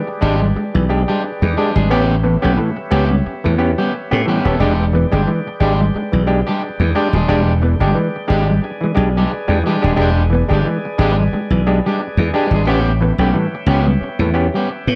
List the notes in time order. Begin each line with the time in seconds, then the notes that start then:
Already playing: G4 G#4 B4 D5
0.07 muted clean electric guitar stroke
0.21 G#1 G#3 D4 G4
0.41 G3 D4 G4, muted clean electric guitar stroke
0.55 G#3 D4 G4, muted slap bass stroke, muted clean electric guitar stroke
0.74 B1 E3, muted clean electric guitar stroke
0.89 G#3 D4 G4, muted clean electric guitar stroke
1.08 G3 G#3 D4 G4
1.23 D4 G4, muted clean electric guitar stroke
1.42 E2 E3 G#3, muted clean electric guitar stroke
1.57 G#3 D4 G4, muted clean electric guitar stroke
1.76 G#1 G3 G#3 D4 G#4
1.90 A1 B3 C#4 G4 C#5 E5
2.09 muted clean electric guitar stroke
2.24 A2 E3 B3, muted clean electric guitar stroke
2.42 B1 A3 B3 C#4 G4
2.57 A2 E3 A3
2.77 muted clean electric guitar stroke
2.91 C#2 B3 C#4 G4
3.10 G3 C#4 G4, muted clean electric guitar stroke
3.26 C#4 G4, muted slap bass stroke, muted clean electric guitar stroke
3.44 E2 A2 E3 A3, muted clean electric guitar stroke
3.58 B3 C#4 G4, muted clean electric guitar stroke
3.78 G3 B3 C#4 G4
3.93 muted clean electric guitar stroke
4.11 A2 A3 B3 C#4 G4, muted clean electric guitar stroke
4.26 A2 E3 G3 B3 C#4 G4
4.45 D#1 B3 C#4 G4 A4
4.60 E1 G#3 D4 G4 G#4 D5 G5
4.81 muted clean electric guitar stroke
4.93 E3 B3, muted clean electric guitar stroke
5.12 G1 G#3 D4 G4
5.27 E3 G#3
5.48 muted clean electric guitar stroke
5.60 G#1 G#3 D4 G4
5.80 G3 D4 G4, muted clean electric guitar stroke
5.94 G#3 D4 G4, muted slap bass stroke, muted clean electric guitar stroke
6.12 B1 E3, muted clean electric guitar stroke
6.26 G#3 D4 G4, muted clean electric guitar stroke
6.47 G3 G#3 D4 G4
6.61 D4 G4, muted clean electric guitar stroke
6.80 E2 E3 G#3, muted clean electric guitar stroke
6.95 G#3 D4 G4, muted clean electric guitar stroke
7.13 D#1 G3 G#3 D4 G#4
7.28 E1 G#3 D4 G4
7.48 muted clean electric guitar stroke
7.62 E3 B3, muted clean electric guitar stroke
7.80 G1 G#3 D4 G4
7.95 E3 G#3
8.16 muted clean electric guitar stroke
8.28 G#1 G#3 D4 G4
8.47 G3 D4 G4, muted clean electric guitar stroke
8.62 D4 G4 G#5, muted clean electric guitar stroke
8.81 E3 G#3, muted clean electric guitar stroke
8.95 B1 G#3 D4 G4, muted clean electric guitar stroke
9.17 G3 G#3 D4 G4
9.33 muted clean electric guitar stroke
9.48 E2 G#3 D4 G4, muted clean electric guitar stroke
9.52 G#3
9.64 E3 G3 G#3 D4 G4
9.82 D#1 G#3 D4 G4 G#4
9.86 G#3
9.96 E1 G#3 D4 G4
10.00 D4 G4
10.18 muted clean electric guitar stroke
10.30 E3 B3
10.34 muted clean electric guitar stroke
10.49 G1 G#3 D4 G4
10.53 G#3 D4 G4
10.65 E3 G#3
10.85 muted clean electric guitar stroke
10.98 G#1 G#3 D4 G4
11.17 G3 D4 G4, muted clean electric guitar stroke
11.32 G#3 D4 G4, muted slap bass stroke, muted clean electric guitar stroke
11.50 B1 E3, muted clean electric guitar stroke
11.67 G#3 D4 G4, muted clean electric guitar stroke
11.86 G3 G#3 D4 G4
11.99 D4 G4, muted clean electric guitar stroke
12.17 E2 E3 G#3, muted clean electric guitar stroke
12.33 G#3 D4 G4, muted clean electric guitar stroke
12.51 G#1 G3 G#4
12.55 G#3 D4
12.65 A1 B3 C#4 G4 B4 C#5 E5 G5
12.70 G4
12.87 muted clean electric guitar stroke
13.01 A2 E3 B3, muted clean electric guitar stroke
13.18 B1 A3 B3 C#4 G4
13.34 A2 E3 G3
13.55 muted clean electric guitar stroke
13.66 C#2 B3 C#4 G4
13.70 C#4 G4
13.86 G3 C#4 G4, muted clean electric guitar stroke
14.01 C#4 G4, muted slap bass stroke, muted clean electric guitar stroke
14.19 E2 A2 E3 A3, muted clean electric guitar stroke
14.34 B3 C#4 G4, muted clean electric guitar stroke
14.54 G3 B3 C#4 G4
14.70 muted clean electric guitar stroke
14.87 A2 B3, muted clean electric guitar stroke